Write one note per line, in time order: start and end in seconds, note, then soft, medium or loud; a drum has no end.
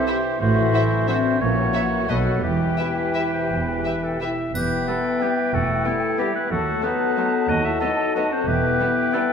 0.00 0.43 C3 soft
0.00 0.37 E3 medium
0.00 0.42 G3 soft
0.00 0.24 E4 soft
0.00 0.37 G4 soft
0.00 0.42 G4 soft
0.00 0.37 C5 medium
0.00 0.19 E5 soft
0.07 0.16 E4 soft
0.07 0.41 G4 soft
0.07 0.15 C5 soft
0.07 0.16 E5 soft
0.41 0.68 A1 soft
0.41 1.42 A2 soft
0.41 0.68 A2 soft
0.41 1.05 E3 soft
0.41 0.73 F#4 soft
0.41 1.04 F#4 soft
0.41 1.04 C5 soft
0.41 1.05 E5 soft
0.57 1.05 E3 medium
0.57 1.56 F#3 soft
0.74 1.08 E4 soft
0.74 0.82 F#4 soft
0.74 0.82 C5 soft
0.74 1.07 C5 soft
0.74 0.83 E5 soft
0.92 1.24 F#4 soft
1.08 1.40 E3 soft
1.08 1.41 C4 medium
1.08 1.41 D4 soft
1.08 1.40 F#4 soft
1.08 1.17 F#4 soft
1.08 1.42 C5 soft
1.08 1.17 C5 soft
1.08 1.16 E5 soft
1.08 1.40 E5 soft
1.25 1.90 F#4 soft
1.40 1.68 A#1 soft
1.40 2.10 A#2 soft
1.40 1.68 A#2 soft
1.40 2.11 E3 soft
1.40 2.09 A#3 medium
1.40 1.74 C#4 soft
1.40 1.92 F#4 soft
1.40 2.10 C#5 soft
1.40 2.08 F#5 soft
1.57 2.45 F#3 soft
1.73 2.43 F#4 soft
1.73 1.82 F#4 soft
1.73 1.82 C#5 soft
1.73 2.10 C#5 soft
1.73 1.81 E5 soft
1.91 2.44 F#4 soft
2.09 2.38 B1 soft
2.09 2.44 B2 soft
2.09 2.38 B2 soft
2.09 2.43 D#3 soft
2.09 2.43 F#3 soft
2.09 2.17 A4 soft
2.09 2.45 A4 soft
2.09 2.43 B4 soft
2.09 2.17 B4 soft
2.09 2.17 D#5 soft
2.09 2.43 F#5 soft
2.26 2.45 D#4 soft
2.26 3.32 B4 soft
2.43 2.72 E1 soft
2.43 2.73 E2 soft
2.43 4.18 E3 soft
2.43 3.49 E3 soft
2.43 4.35 E3 soft
2.43 4.35 G4 soft
2.43 2.75 G4 soft
2.43 4.36 B4 soft
2.43 4.35 G5 soft
2.60 3.66 E4 soft
2.78 3.29 E4 soft
2.78 3.15 G4 soft
2.78 2.87 G4 soft
2.78 2.87 B4 soft
2.78 2.86 E5 soft
2.97 4.03 E5 soft
3.15 3.25 G4 soft
3.15 3.24 B4 soft
3.15 3.23 E5 soft
3.33 3.69 C5 soft
3.50 3.79 E1 soft
3.50 3.79 E2 soft
3.50 4.55 E3 soft
3.67 4.70 E4 soft
3.67 4.05 B4 soft
3.85 4.21 G4 soft
3.85 3.93 G4 soft
3.85 3.94 B4 soft
3.85 3.93 E5 soft
4.03 4.20 A4 soft
4.03 4.95 E5 soft
4.21 4.53 E4 soft
4.21 4.29 G4 soft
4.21 4.30 B4 soft
4.21 4.29 E5 soft
4.21 4.53 E5 soft
4.39 4.79 B4 soft
4.54 4.81 E1 soft
4.54 4.81 E2 soft
4.54 5.52 E3 soft
4.54 6.47 E3 soft
4.54 5.51 B3 soft
4.54 4.86 G4 soft
4.54 5.56 B4 medium
4.54 6.48 G5 soft
4.54 triangle soft
4.64 5.60 G3 soft
4.71 5.68 E4 soft
4.80 5.45 B4 soft
4.88 4.97 G3 soft
4.88 4.96 B3 soft
4.88 5.37 G4 soft
4.88 5.23 A4 soft
5.05 5.21 B5 soft
5.21 5.30 G3 soft
5.21 5.29 B3 soft
5.21 5.30 B3 soft
5.21 5.56 G4 soft
5.21 6.01 B5 soft
5.30 5.93 E5 soft
5.38 5.84 G4 soft
5.46 5.76 B4 soft
5.53 5.79 E1 soft
5.53 5.79 E2 soft
5.53 6.52 E3 soft
5.53 6.20 A3 soft
5.53 5.88 F#4 soft
5.53 6.21 A4 soft
5.61 6.52 G3 soft
5.69 6.52 E4 soft
5.77 6.42 B4 soft
5.85 5.94 G3 soft
5.85 5.93 B3 soft
5.85 5.94 B3 soft
5.85 6.51 E4 soft
5.85 6.34 G4 soft
5.94 6.26 E5 soft
6.03 6.18 B5 soft
6.11 6.52 G5 soft
6.18 6.28 G3 soft
6.18 6.36 G3 soft
6.18 6.26 B3 soft
6.18 6.28 B3 soft
6.18 6.35 G4 soft
6.18 7.08 B5 soft
6.27 6.52 E5 soft
6.35 6.51 B3 soft
6.35 6.52 G4 soft
6.35 6.52 B4 soft
6.43 6.83 B4 soft
6.51 6.76 D#2 soft
6.51 6.77 D#2 soft
6.51 7.47 D#3 soft
6.51 8.43 F#3 soft
6.51 6.83 A3 soft
6.51 6.83 F#4 soft
6.51 6.85 A4 soft
6.51 8.44 A5 soft
6.59 7.55 D#4 soft
6.67 7.63 A3 soft
6.75 7.39 F#4 soft
6.83 6.91 F#3 soft
6.83 6.92 A3 soft
6.83 6.91 B3 soft
6.83 7.49 B3 soft
6.83 7.48 D#4 soft
6.83 7.50 B4 medium
6.83 7.32 B4 soft
7.00 7.16 F#5 soft
7.09 8.06 B5 soft
7.17 7.25 F#3 soft
7.17 7.25 A3 soft
7.17 7.25 B3 soft
7.17 7.97 F#5 soft
7.25 7.89 A4 soft
7.33 7.80 B4 soft
7.41 7.71 F#4 soft
7.49 7.75 D#2 soft
7.49 8.48 D#3 soft
7.49 7.65 D#4 soft
7.49 7.81 F#4 soft
7.49 7.67 D#5 medium
7.64 8.48 A3 soft
7.64 7.82 E4 soft
7.64 7.80 E5 medium
7.73 8.38 F#4 soft
7.81 7.89 F#3 soft
7.81 7.90 A3 soft
7.81 7.89 B3 soft
7.81 8.16 D#4 soft
7.81 8.14 A4 soft
7.81 8.31 B4 soft
7.81 8.14 D#5 medium
7.90 8.22 A4 soft
7.98 8.14 F#5 soft
8.07 8.96 B5 soft
8.15 8.24 F#3 soft
8.15 8.24 A3 soft
8.15 8.24 B3 soft
8.15 8.32 D#4 soft
8.15 8.49 F#4 soft
8.15 8.34 D#5 medium
8.15 8.49 F#5 soft
8.32 8.48 C4 soft
8.32 8.71 B4 soft
8.32 8.47 C5 soft
8.39 8.48 F#4 soft
8.47 8.73 E1 soft
8.47 8.73 E2 soft
8.47 9.33 E3 soft
8.47 9.33 B3 soft
8.47 9.15 G4 medium
8.47 9.33 B4 medium
8.47 9.33 G5 soft
8.55 9.33 G3 soft
8.64 9.33 E4 soft
8.80 8.88 E3 soft
8.80 8.88 G3 soft
8.80 8.88 B3 soft
8.89 9.21 E5 soft
8.97 9.13 B5 soft
9.05 9.33 G5 soft
9.13 9.21 E3 soft
9.13 9.22 G3 soft
9.13 9.21 B3 soft
9.13 9.33 A4 soft
9.13 9.33 B5 soft
9.22 9.33 E5 soft